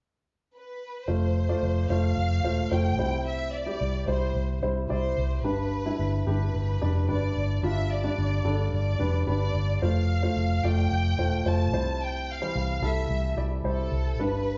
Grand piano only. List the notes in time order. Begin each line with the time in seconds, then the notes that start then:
1.08 A3 F4 C5
1.49 A3 F4 D5
1.89 A3 F4 C5
2.44 A3 F4 C5
2.71 A3 F4 C5
2.98 C3 G3 E4 C5
3.66 G3 E4 G4
4.07 G3 E4 C5
4.63 G3 E4 C5
4.89 G3 E4 D5
5.44 G2 G3 D4 B4
5.86 G3 D4 E4
6.27 G3 D4 G4
6.81 G3 D4 D5
7.09 G3 D4 B4
7.63 G2 G3 D4 F4
8.03 G3 D4 D5
8.45 G3 D4 A4
8.99 G3 D4 B4
9.27 G3 D4 B4
9.82 A3 F4 C5
10.22 A3 F4 C5
10.64 A3 F4 D5
11.18 A3 F4 C5
11.45 A3 F4 C5
11.73 C3 G3 E4 C5
12.42 E3 G3 C5
12.82 G3 E4 A4
13.37 G3 E4 D5
13.64 G3 E4 C5
14.19 G2 G3 D4 B4